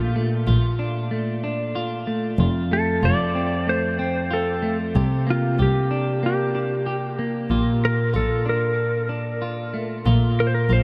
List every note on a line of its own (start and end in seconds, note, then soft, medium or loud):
0.00 2.39 A#2 medium
0.00 0.15 A3 soft
0.00 0.78 D4 medium
0.00 0.47 F4 soft
0.16 1.11 A3 medium
0.47 0.56 A#1 medium
0.47 1.75 F4 medium
0.79 1.42 D4 medium
1.11 2.07 A3 soft
1.44 2.46 D4 medium
1.75 2.39 F4 medium
2.07 2.71 A3 soft
2.39 2.47 F1 medium
2.39 4.95 F2 medium
2.39 3.02 F4 soft
2.71 3.65 A3 soft
2.71 3.05 A4 medium
3.03 3.11 F1 medium
3.03 4.29 F4 medium
3.03 3.70 D5 medium
3.35 3.99 C4 medium
3.67 4.61 A3 soft
3.67 4.34 C5 medium
3.99 5.30 C4 medium
4.31 4.95 F4 medium
4.31 4.77 A4 medium
4.62 5.01 A3 medium
4.95 5.04 C2 loud
4.95 7.50 C3 medium
4.95 5.58 G4 medium
5.27 6.22 A#3 soft
5.27 5.62 F4 medium
5.59 5.67 C2 medium
5.59 6.85 G4 medium
5.59 6.25 G4 medium
5.91 6.54 D4 medium
6.23 7.18 A#3 medium
6.23 7.16 G4 medium
6.55 8.45 D4 soft
6.86 7.50 G4 medium
7.19 9.73 A#3 medium
7.50 7.59 A#1 medium
7.50 10.04 A#2 medium
7.50 8.13 F4 medium
7.85 8.16 A#4 medium
8.13 8.23 A#1 medium
8.13 9.41 F4 medium
8.13 8.48 A4 medium
8.46 9.08 D4 medium
8.46 9.08 A#4 medium
9.09 10.83 D4 medium
9.42 10.06 F4 medium
9.74 10.83 A3 medium
10.06 10.14 A#1 medium
10.06 10.83 A#2 medium
10.06 10.69 F4 medium
10.40 10.46 A#4 medium
10.47 10.53 C5 medium
10.54 10.71 A#4 medium
10.70 10.78 A#1 medium
10.70 10.83 F4 medium
10.70 10.83 C5 medium